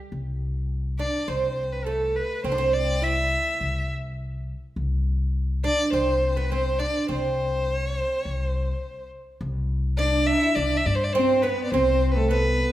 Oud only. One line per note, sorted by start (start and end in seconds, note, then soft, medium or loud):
0.99 1.26 D4 medium
1.28 1.88 C4 medium
1.86 2.46 A3 medium
2.44 2.51 C4 medium
2.52 2.58 D4 medium
2.58 3.02 C4 medium
3.02 3.85 E4 medium
5.64 5.93 D4 medium
5.93 6.38 C4 medium
6.37 6.52 B3 medium
6.52 6.79 C4 medium
6.80 7.08 D4 medium
7.08 9.08 C4 medium
9.99 10.55 D4 medium
10.56 10.77 D4 medium
11.15 11.44 C4 medium
11.43 11.73 B3 medium
11.74 12.33 C4 medium
12.31 12.72 B3 medium